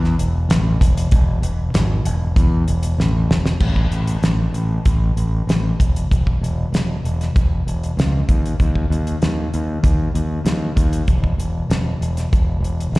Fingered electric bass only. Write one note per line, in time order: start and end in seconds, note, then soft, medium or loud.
0.00 0.14 E2 medium
0.19 0.45 E1 medium
0.49 0.76 A1 medium
0.81 1.07 E1 loud
1.12 1.39 E1 medium
1.42 1.69 E1 medium
1.74 2.01 G#1 medium
2.05 2.32 E1 medium
2.36 2.63 E2 medium
2.68 2.94 E1 medium
2.98 3.25 A1 medium
3.29 3.56 E1 medium
3.61 3.85 A1 medium
3.91 4.16 A1 medium
4.22 4.47 A1 medium
4.53 4.77 A1 medium
4.86 5.10 A1 medium
5.17 5.41 A1 medium
5.47 5.72 A1 medium
5.80 6.04 E1 medium
6.12 6.35 E1 medium
6.41 6.65 E1 medium
6.73 6.96 E1 medium
7.04 7.28 E1 medium
7.36 7.60 E1 medium
7.67 7.91 E1 medium
7.97 8.21 C#2 medium
8.29 8.53 D#2 medium
8.60 8.84 D#2 medium
8.90 9.14 D#2 medium
9.22 9.46 D#2 medium
9.54 9.77 D#2 medium
9.83 10.07 D#2 medium
10.15 10.39 D#2 medium
10.45 10.69 D#2 medium
10.76 11.01 D#2 medium
11.08 11.32 E1 medium
11.38 11.63 E1 medium
11.70 11.94 E1 medium
12.01 12.25 E1 medium
12.33 12.57 E1 medium
12.60 12.86 E1 medium
12.92 12.99 G#1 medium